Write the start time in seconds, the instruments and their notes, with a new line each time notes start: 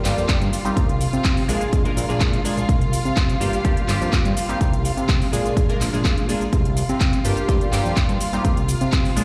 Already playing: violin section F4 F5
0.04 analog synth bass G1, analog polysynth G3 A#3 D4 F4 G4, clap, open hi-hat, shaker
0.18 analog synth bass F2, shaker
0.29 kick, clap, closed hi-hat, shaker
0.42 analog synth bass G2, closed hi-hat, shaker
0.53 open hi-hat, shaker
0.65 analog polysynth G3 A#3 C4 D#4 G4, closed hi-hat, shaker
0.77 analog synth bass C2, kick, closed hi-hat, shaker
0.89 closed hi-hat, shaker
1.01 open hi-hat, shaker
1.13 analog synth bass C3, closed hi-hat, shaker
1.24 kick, clap, closed hi-hat, shaker
1.37 open hi-hat, shaker
1.48 analog synth bass A#1, analog polysynth G#3 A#3 D4 F4 G#4, open hi-hat, shaker
1.61 closed hi-hat, shaker
1.73 kick, closed hi-hat, shaker
1.85 analog synth bass A#1, analog polysynth G#3 A#3 D4 F4 A#4, closed hi-hat, shaker
1.97 analog synth bass A#1, open hi-hat, shaker
2.09 analog synth bass A#1, analog polysynth G#3 A#3 D4 F4 G#4, shaker
2.20 kick, clap, closed hi-hat, shaker
2.33 closed hi-hat, shaker
2.44 analog synth bass A#1, analog polysynth G#3 A#3 D4 F4 G#4, open hi-hat, shaker
2.58 analog synth bass A#1, closed hi-hat, shaker
2.69 analog synth bass C2, kick, closed hi-hat, shaker
2.81 closed hi-hat, shaker
2.93 open hi-hat, shaker
3.05 analog synth bass C3, closed hi-hat, shaker
3.16 kick, clap, closed hi-hat, shaker
3.29 closed hi-hat, shaker
3.40 analog synth bass G1, analog polysynth G3 A#3 D4 F4 G4, open hi-hat, shaker
3.53 closed hi-hat, shaker
3.64 analog synth bass G2, analog polysynth G3 A#3 D4 F4 G4, kick, closed hi-hat, shaker
3.77 closed hi-hat, shaker
3.88 analog synth bass G1, analog polysynth G3 A#3 D4 F4 G4, clap, open hi-hat, shaker
4.01 analog synth bass F2, shaker
4.13 kick, clap, closed hi-hat, shaker
4.25 analog synth bass G2, closed hi-hat, shaker
4.37 open hi-hat, shaker
4.49 analog polysynth G3 A#3 C4 D#4 G4, closed hi-hat, shaker
4.61 analog synth bass C2, kick, closed hi-hat, shaker
4.73 closed hi-hat, shaker
4.85 open hi-hat, shaker
4.97 analog synth bass C3, closed hi-hat, shaker
5.09 kick, clap, closed hi-hat, shaker
5.22 open hi-hat, shaker
5.32 analog synth bass A#1, analog polysynth G#3 A#3 D4 F4 G#4, open hi-hat, shaker
5.46 closed hi-hat, shaker
5.57 kick, closed hi-hat, shaker
5.69 analog synth bass A#1, analog polysynth G#3 A#3 D4 F4 A#4, closed hi-hat, shaker
5.81 analog synth bass A#1, clap, open hi-hat, shaker
5.93 analog synth bass A#1, analog polysynth G#3 A#3 D4 F4 G#4, shaker
6.05 analog synth bass A#2, kick, clap, closed hi-hat, shaker
6.18 closed hi-hat, shaker
6.29 analog polysynth G#3 A#3 D4 F4 G#4, open hi-hat, shaker
6.41 closed hi-hat, shaker
6.52 analog synth bass C2, violin section F4 F5, kick, closed hi-hat, shaker
6.65 closed hi-hat, shaker
6.77 open hi-hat, shaker
6.89 analog synth bass C3, closed hi-hat, shaker
7.00 kick, clap, closed hi-hat, shaker
7.13 closed hi-hat, shaker
7.25 analog synth bass G1, analog polysynth G3 A#3 D4 F4 G4, open hi-hat, shaker
7.37 closed hi-hat, shaker
7.48 analog synth bass G2, analog polysynth G3 A#3 D4 F4 G4, kick, closed hi-hat, shaker
7.61 closed hi-hat, shaker
7.72 analog synth bass G1, analog polysynth G3 A#3 D4 F4 G4, clap, open hi-hat, shaker
7.85 analog synth bass F2, shaker
7.96 kick, clap, closed hi-hat, shaker
8.09 analog synth bass G2, closed hi-hat, shaker
8.21 open hi-hat, shaker
8.33 analog polysynth G3 A#3 C4 D#4 G4, closed hi-hat, shaker
8.45 analog synth bass C2, kick, closed hi-hat, shaker
8.57 closed hi-hat, shaker
8.68 open hi-hat, shaker
8.81 analog synth bass C3, closed hi-hat, shaker
8.92 kick, clap, closed hi-hat, shaker
9.05 open hi-hat, shaker
9.16 analog synth bass A#1, analog polysynth G#3 A#3 D4 F4 G#4, open hi-hat, shaker